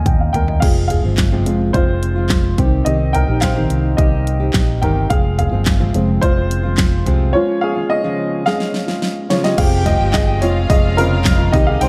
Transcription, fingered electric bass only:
0.06 0.32 D#2 medium
0.34 0.60 D#2 medium
0.62 1.01 F1 medium
1.04 1.46 G1 medium
1.46 1.72 F1 medium
1.74 2.54 F1 medium
2.58 2.84 C2 medium
2.86 3.25 C2 medium
3.28 3.67 A#1 medium
3.70 3.96 C2 medium
3.98 4.50 C2 loud
4.54 4.80 A#1 medium
4.82 5.08 G1 medium
5.10 5.50 F1 medium
5.53 5.92 G1 medium
5.95 6.21 F1 loud
6.23 7.02 F1 medium
7.07 7.33 C2 medium
9.58 9.97 F1 loud
10.00 10.42 G1 medium
10.42 10.68 F1 medium
10.70 11.50 F1 loud
11.53 11.79 C2 medium
11.81 11.89 C2 loud

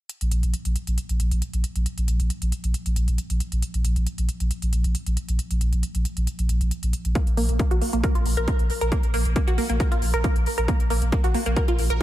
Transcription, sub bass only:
0.21 0.31 A#1 medium
0.32 0.43 A#1 loud
0.43 0.53 A#1 medium
0.65 0.75 A#1 medium
0.87 0.98 A#1 medium
1.09 1.19 A#1 medium
1.20 1.31 A#1 loud
1.31 1.42 A#1 medium
1.53 1.64 A#1 medium
1.75 1.86 A#1 medium
1.98 2.07 A#1 medium
2.08 2.19 A#1 loud
2.20 2.30 A#1 medium
2.42 2.52 A#1 medium
2.64 2.74 A#1 medium
2.86 2.96 A#1 medium
2.96 3.07 A#1 loud
3.08 3.18 A#1 medium
3.30 3.40 A#1 medium
3.52 3.62 A#1 medium
3.74 3.84 A#1 medium
3.85 3.96 A#1 loud
3.96 4.06 A#1 medium
4.18 4.28 A#1 medium
4.40 4.50 A#1 medium
4.62 4.72 A#1 medium
4.73 4.84 A#1 loud
4.84 4.95 A#1 medium
5.06 5.17 A#1 medium
5.29 5.39 A#1 medium
5.51 5.60 A#1 medium
5.61 5.72 A#1 loud
5.73 5.83 A#1 medium
5.95 6.05 A#1 medium
6.17 6.27 A#1 medium
6.39 6.49 A#1 medium
6.49 6.60 A#1 loud
6.61 6.71 A#1 medium
6.83 6.93 A#1 medium
7.05 7.15 A#1 medium
7.27 7.37 A#1 medium
7.37 7.48 A#1 loud
7.49 7.59 A#1 medium
7.71 7.81 A#1 medium
7.93 8.03 A#1 medium
8.15 8.25 A#1 medium
8.26 8.37 A#1 loud
8.37 8.47 A#1 medium
8.59 8.70 A#1 medium
8.81 8.92 A#1 medium
9.03 9.13 A#1 medium
9.14 9.25 A#1 loud
9.26 9.36 A#1 medium
9.48 9.58 A#1 medium
9.70 9.80 A#1 medium
9.92 10.02 A#1 medium
10.02 10.13 A#1 loud
10.14 10.24 A#1 medium
10.36 10.46 A#1 medium
10.58 10.68 A#1 medium
10.80 10.90 A#1 medium
10.90 11.01 A#1 loud
11.02 11.12 A#1 medium
11.24 11.34 A#1 medium
11.46 11.56 A#1 medium
11.68 11.78 A#1 medium
11.79 11.90 A#1 medium
11.90 12.00 A#1 medium

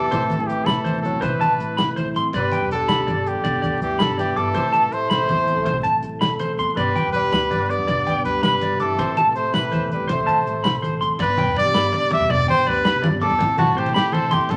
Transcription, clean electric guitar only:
0.11 0.23 C5 medium
0.67 0.78 B5 medium
0.84 0.96 C5 medium
1.21 1.33 C5 medium
1.41 1.52 A5 medium
1.77 1.89 B5 medium
1.96 2.08 C5 medium
2.16 2.27 C6 medium
2.34 2.45 D5 medium
2.52 2.64 G5 medium
2.88 3.00 B5 medium
3.07 3.19 D5 medium
3.44 3.55 D5 medium
3.62 3.74 D5 medium
3.99 4.11 B5 medium
4.18 4.29 D5 medium
4.36 4.48 D6 medium
4.55 4.66 C5 medium
4.72 4.84 A5 medium
5.10 5.21 B5 medium
5.28 5.40 C5 medium
5.65 5.77 C5 medium
5.83 5.95 A5 medium
6.21 6.32 B5 medium
6.40 6.51 C5 medium
6.59 6.70 C6 medium
6.77 6.88 D5 medium
6.96 7.07 G5 medium
7.33 7.44 B5 medium
7.51 7.62 D5 medium
7.87 7.99 D5 medium
8.07 8.18 G5 medium
8.43 8.54 B5 medium
8.63 8.74 D5 medium
8.80 8.91 D6 medium
8.99 9.10 C5 medium
9.17 9.28 A5 medium
9.54 9.65 B5 medium
9.72 9.83 C5 medium
10.08 10.19 C5 medium
10.27 10.38 A5 medium
10.64 10.75 B5 medium
10.82 10.94 C5 medium
11.01 11.12 C6 medium
11.20 11.31 D5 medium
11.38 11.49 G5 medium
11.57 11.68 D5 medium
11.74 11.86 B5 medium
11.93 12.04 D5 medium
12.11 12.23 D6 medium
12.30 12.41 D5 medium
12.48 12.60 G5 medium
12.66 12.78 D5 medium
12.85 12.96 B5 medium
13.02 13.14 D5 medium
13.22 13.33 D6 medium
13.39 muted clean electric guitar stroke medium
13.59 13.70 A5 medium
13.77 13.88 C5 medium
13.94 14.06 B5 medium
14.13 14.25 C5 medium
14.31 14.43 C6 medium
14.50 muted clean electric guitar stroke medium

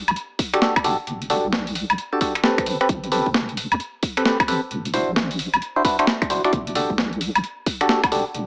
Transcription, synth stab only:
0.53 0.61 D4 loud
0.53 0.61 F#4 medium
0.53 0.61 G4 medium
0.53 0.60 A4 loud
0.62 0.74 D4 medium
0.62 0.74 F#4 medium
0.62 0.74 G4 medium
0.62 0.74 A4 medium
0.84 0.97 D4 loud
0.84 0.97 F#4 medium
0.84 0.97 G4 medium
0.84 0.97 A4 loud
1.30 1.48 D4 medium
1.30 1.48 F#4 medium
1.30 1.48 G4 medium
1.30 1.48 A4 medium
2.13 2.20 D4 medium
2.13 2.20 F#4 medium
2.13 2.20 G4 medium
2.13 2.20 A4 loud
2.21 2.33 D4 medium
2.21 2.33 F#4 medium
2.21 2.33 G4 medium
2.21 2.33 A4 loud
2.44 2.77 C4 medium
2.44 2.77 G4 medium
2.44 2.77 A4 medium
2.44 2.77 B4 medium
2.81 2.88 C4 medium
2.81 2.88 G4 medium
2.81 2.88 A4 medium
2.81 2.88 B4 loud
3.12 3.29 C4 medium
3.12 3.29 G4 medium
3.12 3.29 A4 medium
3.12 3.29 B4 medium
4.17 4.24 C4 loud
4.17 4.24 G4 loud
4.17 4.24 A4 medium
4.17 4.24 B4 loud
4.25 4.38 C4 medium
4.25 4.38 G4 medium
4.25 4.38 A4 medium
4.25 4.38 B4 loud
4.48 4.61 C4 medium
4.48 4.61 G4 medium
4.48 4.61 A4 medium
4.48 4.61 B4 loud
4.94 5.11 D4 medium
4.94 5.11 E4 medium
4.94 5.11 F#4 medium
4.94 5.11 C5 medium
5.76 5.83 D4 medium
5.76 5.83 E4 medium
5.76 5.83 F#4 medium
5.76 5.83 C5 loud
5.84 5.97 D4 medium
5.84 5.97 E4 medium
5.84 5.97 F#4 medium
5.84 5.97 B4 medium
5.99 6.06 D4 medium
5.99 6.06 E4 medium
5.99 6.06 F#4 medium
5.99 6.06 C5 loud
6.30 6.42 D4 medium
6.30 6.42 E4 medium
6.30 6.42 F#4 medium
6.30 6.42 C5 loud
6.45 6.52 D4 medium
6.45 6.52 E4 medium
6.45 6.52 F#4 medium
6.45 6.52 D5 loud
6.75 6.93 D4 medium
6.75 6.93 F#4 medium
6.75 6.93 G4 medium
6.75 6.93 A4 medium
7.81 7.88 D4 loud
7.81 7.88 F#4 medium
7.81 7.88 G4 medium
7.81 7.88 A4 loud
7.89 8.02 D4 medium
7.89 8.02 F#4 medium
7.89 8.02 G4 medium
7.89 8.02 A4 loud
8.12 8.24 D4 medium
8.12 8.24 F#4 medium
8.12 8.24 G4 medium
8.12 8.24 A4 loud

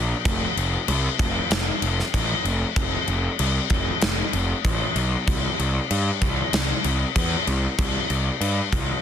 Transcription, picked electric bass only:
0.00 0.13 A#1 medium
0.25 0.44 F1 medium
0.57 0.76 F1 medium
0.88 1.07 C2 medium
1.19 1.38 F1 medium
1.50 1.69 F1 medium
1.82 2.01 F1 medium
2.14 2.33 A1 medium
2.44 2.64 F1 medium
2.76 2.95 F1 medium
3.08 3.27 F1 medium
3.39 3.58 C2 medium
3.71 3.90 F1 medium
4.02 4.21 F1 medium
4.33 4.52 F1 medium
4.64 4.84 A1 medium
4.95 5.15 B1 medium
5.27 5.46 C2 medium
5.59 5.78 C2 medium
5.91 6.10 G2 medium
6.22 6.41 C2 medium
6.53 6.72 C2 medium
6.85 7.04 C2 medium
7.16 7.35 E2 medium
7.47 7.66 C2 medium
7.78 7.97 C2 medium
8.10 8.29 C2 medium
8.41 8.60 G2 medium
8.72 8.91 C2 medium

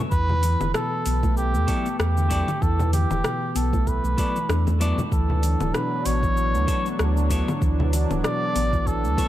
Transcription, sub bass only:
0.12 0.56 E2 loud
0.61 0.72 E1 loud
1.06 1.56 B1 medium
1.55 1.66 E2 medium
1.99 2.43 E2 loud
2.62 3.06 E2 loud
3.11 3.22 E1 loud
3.56 4.00 B1 medium
4.04 4.16 B1 medium
4.49 4.93 E2 medium
5.12 5.56 D2 loud
5.61 5.72 D1 loud
6.06 6.56 A1 loud
6.55 6.66 D2 medium
6.99 7.43 D2 loud
7.62 8.06 D2 loud
8.11 8.22 D1 loud
8.55 9.06 A1 medium
9.04 9.16 D2 medium

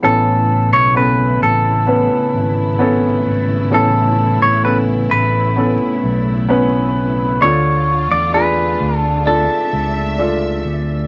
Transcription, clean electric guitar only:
0.05 0.69 A4 medium
0.73 0.97 C#5 medium
0.97 1.43 B4 medium
1.43 3.23 A4 medium
3.74 4.39 A4 medium
4.42 4.64 C#5 medium
4.65 4.77 B4 medium
5.11 6.92 B4 medium
7.42 8.07 C#5 medium
8.11 8.34 D5 medium
8.34 8.97 B4 medium
8.97 9.23 A4 medium
9.27 10.61 A4 medium

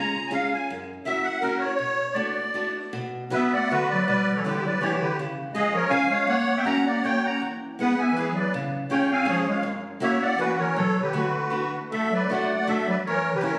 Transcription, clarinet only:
3.35 3.54 B3 medium
3.56 3.71 A3 medium
3.72 3.91 D3 medium
3.92 4.07 F#3 medium
4.08 4.35 G3 medium
4.37 4.45 E3 medium
4.45 4.64 D3 medium
4.64 4.80 F#3 medium
4.81 4.99 E3 medium
5.00 5.16 D3 medium
5.54 5.73 G#3 medium
5.74 5.90 F3 medium
5.90 6.10 C#4 medium
6.10 6.27 G#3 medium
6.28 6.55 A#3 medium
6.57 6.66 B3 medium
6.67 6.86 C#4 loud
6.88 7.03 A#3 medium
7.04 7.24 A#3 medium
7.29 7.43 C#4 medium
7.80 7.97 B3 medium
7.97 8.12 B3 medium
8.12 8.32 E3 medium
8.33 8.51 F#3 medium
8.92 9.10 C#4 medium
9.12 9.27 C4 medium
9.30 9.48 F3 medium
9.49 9.64 G#3 medium
10.01 10.21 A#3 medium
10.21 10.37 A#3 medium
10.38 10.58 E3 medium
10.61 10.76 E3 medium
10.78 11.01 F#3 loud
11.03 11.13 D3 medium
11.13 11.70 D3 medium
11.92 12.11 A3 medium
12.12 12.28 F#3 medium
12.29 12.53 A3 medium
12.56 12.67 A3 medium
12.69 12.88 A3 medium
12.88 12.96 F#3 medium
13.04 13.31 E3 medium
13.34 13.39 D3 medium
13.39 13.59 E3 medium

